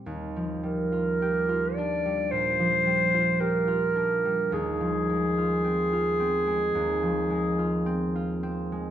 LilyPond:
<<
  \new Staff \with { instrumentName = "Clarinet" } { \time 4/4 \key ees \major \tempo 4 = 54 r8 bes'4 d''8 c''4 bes'4 | aes'1 | }
  \new Staff \with { instrumentName = "Harp" } { \clef bass \time 4/4 \key ees \major <ees, g>16 f16 g16 f'16 g'16 f'16 d'16 g16 bes,16 f16 g16 f'16 g'16 f'16 d'16 g16 | ees,16 f16 aes16 f'16 c'16 f'16 c'16 aes16 ees,16 f16 aes16 f'16 c'16 f'16 c'16 aes16 | }
>>